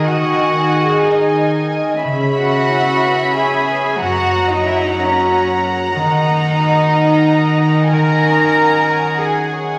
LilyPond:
<<
  \new Staff \with { instrumentName = "Violin section" } { \time 3/4 \key gis \minor \tempo 4 = 93 <dis'' gis''>2. | <e'' b''>2. | <fis'' ais''>2.~ | <fis'' ais''>2. |
<fis'' gis''>2. | }
  \new Staff \with { instrumentName = "Violin section" } { \time 3/4 \key gis \minor fis''4. dis''4 r8 | r8 fis''4. gis''4 | fis''8. dis''16 e''16 dis''16 cis''4 r8 | dis''2. |
ais''2 gis''4 | }
  \new Staff \with { instrumentName = "Harp" } { \time 3/4 \key gis \minor <dis bis dis' dis''>8 dis'8 gis'8 dis''8 gis''8 dis''8 | cis8 b8 e'8 b'8 e''8 b'8 | fis,8 ais8 fis'8 ais'8 fis''8 ais'8 | dis8 ais8 fis'8 ais'8 fis''4 |
dis8 cis'8 fis'8 cis''8 fis''8 cis''8 | }
  \new Staff \with { instrumentName = "Cello section" } { \time 3/4 \key gis \minor fis'4. dis'4 r8 | r8 fis'4. gis'4 | fis'8. dis'16 e'16 dis'16 cis'4 r8 | dis'2. |
ais'2 gis'4 | }
  \new Staff \with { instrumentName = "Viola section" } { \clef bass \time 3/4 \key gis \minor dis2. | cis'2. | fis2. | dis2.~ |
dis2. | }
>>